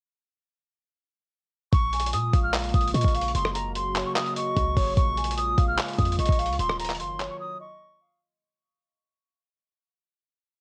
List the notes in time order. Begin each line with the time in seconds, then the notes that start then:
1.73 A#1 C#3 G#3 A#3 F4 C#6, kick, closed hi-hat
1.93 G#5, closed hi-hat
2.00 closed hi-hat
2.06 closed hi-hat
2.13 A#2 D#6, closed hi-hat
2.33 A#1 F5, kick, closed hi-hat
2.43 F6
2.54 clap, closed hi-hat
2.59 closed hi-hat
2.64 closed hi-hat
2.69 closed hi-hat
2.74 A#1 D#6, kick, closed hi-hat
2.81 closed hi-hat
2.88 closed hi-hat
2.94 A#2 D#5 C#6, closed hi-hat
3.01 A#1, kick, closed hi-hat
3.08 closed hi-hat
3.15 F5, closed hi-hat
3.21 closed hi-hat
3.28 closed hi-hat
3.35 F#1 F#3 F#4 C6, closed hi-hat
3.45 cross-stick
3.55 A#5, closed hi-hat
3.75 C6, closed hi-hat
3.95 C#5, clap, closed hi-hat
4.06 C#6
4.16 D#6, clap, closed hi-hat
4.26 closed hi-hat
4.36 D#5 C#6, closed hi-hat
4.57 C#2, kick, closed hi-hat
4.77 F#1 C#5, kick, open hi-hat
4.97 A#1 G#3 F4 C#6, kick, closed hi-hat
5.17 G#5, closed hi-hat
5.24 closed hi-hat
5.31 closed hi-hat
5.37 D#6, closed hi-hat
5.58 A#1 F5, kick, closed hi-hat
5.68 F6
5.78 clap, closed hi-hat
5.83 closed hi-hat
5.88 closed hi-hat
5.93 closed hi-hat
5.98 F2 D#6, kick, closed hi-hat
6.05 closed hi-hat
6.12 closed hi-hat
6.19 A#1 D#5 C#6, closed hi-hat
6.25 A#1, kick, closed hi-hat
6.32 closed hi-hat
6.39 F5, closed hi-hat
6.46 C#2, closed hi-hat
6.53 closed hi-hat
6.59 D#1 D#3 F#3 C6, closed hi-hat
6.69 cross-stick
6.79 A#5, closed hi-hat
6.85 closed hi-hat
6.90 clap, closed hi-hat
6.95 closed hi-hat
7.00 F#1 C6, closed hi-hat
7.20 C#5, clap, closed hi-hat
7.30 C#6
7.40 D#6
7.60 D#5 C#6
8.01 F5